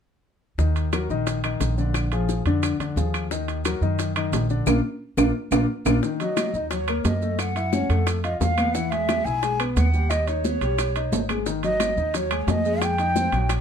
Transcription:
0.58 D#2 D#3 D#4 D#5, high bongo, maracas
0.76 high bongo, high timbale, maracas
0.93 F#3 F#4 A#4, high bongo, high timbale, claves, maracas
1.09 A#1 D#3 D#4 D#5, high bongo, maracas
1.27 high bongo, high timbale, maracas
1.44 D#3 D#4 D#5, high timbale, claves, maracas
1.60 A#1, high bongo, low bongo, high timbale, maracas
1.78 D3 D4 D5, high bongo, maracas
1.94 high bongo, high timbale, claves, maracas
2.12 F3 F4 G#4, high bongo, high timbale, maracas
2.29 high bongo, maracas
2.46 F2 D3 D4 D5, high bongo, high timbale, maracas
2.63 high bongo, high timbale, claves, maracas
2.79 F2 D3 D4 D5, high timbale, maracas
2.96 D#2 F3 F4 G#4, high bongo, low bongo, maracas
3.14 high bongo, high timbale, claves, maracas
3.31 D#3 D#4 D#5, high bongo, maracas
3.48 high bongo, high timbale, maracas
3.65 F#3 F#4 A#4, high bongo, high timbale, claves, maracas
3.81 F#2 D#3 D#4 D#5, high bongo, maracas
3.99 high bongo, high timbale, maracas
4.16 D#3 D#4 D#5, high timbale, claves, maracas
4.32 A#1, high bongo, low bongo, high timbale, low timbale, maracas
4.50 D3 D4 D5, high bongo, maracas
4.66 A#1 A#3 D4 F4, low bongo, high timbale, claves, maracas
5.17 A#1 A#3 D4 F4, low bongo, high timbale, claves, maracas
5.51 A#1 A#3 D4 F4, low bongo, high timbale, claves, maracas
5.85 A#1 A#3 D4 F4, low bongo, high timbale, claves, maracas
6.03 D#3 D#4, high bongo, high conga, maracas
6.20 F#3 F#4 D#5, high bongo, high conga, high timbale, maracas
6.37 high bongo, high conga, high timbale, claves, maracas
6.54 D#2 D#4 D#5, high bongo, maracas
6.71 F#3 F#4 C#5, high bongo, high conga, high timbale, maracas
6.88 A#3 A#4, high conga, high timbale, claves, maracas
7.04 F#2 D#5, high bongo, low bongo, high conga, high timbale, low timbale, maracas
7.22 A3 A4, high bongo, maracas
7.39 F#5, high bongo, high conga, high timbale, claves, maracas
7.56 E4 E5, high bongo, high conga, high timbale, maracas
7.73 C#4 C#5, high bongo, high conga, maracas
7.89 F2 A3 A4, high bongo, high timbale, maracas
8.07 high bongo, high conga, high timbale, claves, maracas
8.24 F4 D#5 F5, high conga, high timbale, maracas
8.40 E2 F5, high bongo, low bongo, high conga, low timbale, maracas
8.58 B3 B4, high bongo, high conga, high timbale, claves, maracas
8.73 E3 E4 F#5, high bongo, high conga, maracas
8.91 G#3 G#4 E5, high bongo, high conga, high timbale, maracas
9.09 high bongo, high conga, high timbale, claves, maracas
9.25 B1 E4 E5 G#5, high bongo, maracas
9.43 G#3 G#4, high bongo, high conga, high timbale, maracas
9.60 B3 B4, high conga, high timbale, claves, maracas
9.76 D#2 F#5, high bongo, low bongo, high conga, high timbale, maracas
9.93 G3 G4, high bongo, maracas
10.10 D#5, high bongo, high conga, high timbale, claves, maracas
10.27 D#4 C#5 D#5, high bongo, high conga, high timbale, maracas
10.45 B3 B4, high bongo, high conga, maracas
10.61 B1 G3 G4, high bongo, high timbale, maracas
10.78 high bongo, high conga, high timbale, claves, maracas
10.95 D#4 D#5, high conga, high timbale, maracas
11.12 G#1, high bongo, low bongo, high conga, low timbale, maracas
11.29 G#3 G#4, high bongo, high conga, high timbale, claves, maracas
11.46 D#3 D#4, high bongo, high conga, maracas
11.63 F#3 F#4 D#5, high bongo, high conga, high timbale, maracas
11.80 high bongo, high conga, high timbale, claves, maracas
11.97 D#2 D#4 D#5, high bongo, maracas
12.14 F#3 F#4 C#5, high bongo, high conga, high timbale, maracas
12.31 G#3 G#4, high conga, high timbale, claves, maracas
12.41 C#5
12.47 F2 D#5, high bongo, low bongo, high conga, high timbale, low timbale, maracas
12.65 G#3 G#4, high bongo, high conga, maracas
12.82 G5, high bongo, high conga, high timbale, claves, maracas
12.98 D#4 D#5, high bongo, high conga, high timbale, maracas
13.16 C4 C5, high bongo, high conga, maracas
13.32 A#1 F#3 F#4, high bongo, high timbale, maracas
13.49 high bongo, high conga, high timbale, claves, maracas

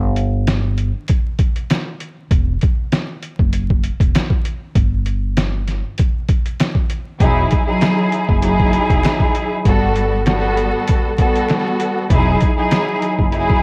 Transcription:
Already playing: G1
0.16 closed hi-hat
0.47 snare, closed hi-hat
0.78 closed hi-hat
1.08 kick, closed hi-hat
1.39 kick, closed hi-hat
1.56 closed hi-hat
1.70 snare, closed hi-hat
2.00 closed hi-hat
2.31 E1, kick, closed hi-hat
2.61 kick, closed hi-hat
2.92 snare, closed hi-hat
3.23 closed hi-hat
3.39 F#1, kick
3.53 closed hi-hat
3.70 kick
3.83 closed hi-hat
4.00 E1, kick, closed hi-hat
4.15 snare, closed hi-hat
4.30 kick
4.45 closed hi-hat
4.75 G1, kick, closed hi-hat
5.06 closed hi-hat
5.37 snare, closed hi-hat
5.67 snare, closed hi-hat
5.98 kick, closed hi-hat
6.29 kick, closed hi-hat
6.46 closed hi-hat
6.60 snare, closed hi-hat
6.75 kick
6.90 closed hi-hat
7.20 E1 F#3 D#4 E4 G#4, kick, closed hi-hat
7.51 kick, closed hi-hat
7.66 F#3 D#4 E4 G#4
7.81 finger snap, snare, closed hi-hat
8.12 closed hi-hat
8.29 F#1, kick
8.42 F#3 D#4 E4 G#4, closed hi-hat
8.60 kick
8.73 closed hi-hat
8.90 E1, kick, closed hi-hat
9.03 finger snap, snare, closed hi-hat
9.20 kick
9.35 closed hi-hat
9.65 G1 G3 B3 F#4 A4, kick, closed hi-hat
9.96 closed hi-hat
10.26 G3 B3 F#4 A4, finger snap, snare, closed hi-hat
10.57 closed hi-hat
10.87 kick, closed hi-hat
11.18 G3 B3 F#4 A4, kick, closed hi-hat
11.35 closed hi-hat
11.48 finger snap, snare, closed hi-hat
11.80 closed hi-hat
12.10 E1 F#3 D#4 E4 G#4, kick, closed hi-hat
12.41 kick, closed hi-hat
12.56 F#3 D#4 E4 G#4
12.71 finger snap, snare, closed hi-hat
13.02 closed hi-hat
13.19 F#1, kick
13.32 F#3 D#4 E4 G#4, closed hi-hat
13.50 kick

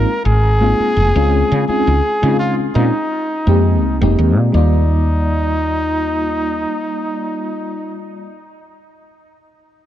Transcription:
Already playing: A#4
0.25 G#1 G#4
0.61 G#3 A#3 C4 D#4 F4
0.80 muted fretless electric bass stroke
0.97 F1
1.16 C#2 G#3 C4 C#4 D#4 F4
1.52 C#3
1.68 G#3 C4 C#4 D#4 F4 G#4, muted fretless electric bass stroke
1.87 C#2
2.22 C#3 G#3 C4 C#4 D#4 F4
2.39 F4
2.75 A#2 G#3 C4 C#4 D#4 F4
3.46 F2 G#3 A#3 C4 D#4 G4
3.82 C2
4.01 F1 G#3 A#3 C4 D#4 G4
4.19 D#2
4.37 A#2
4.52 D#2 G3 A#3 D#4 D5
4.57 F4

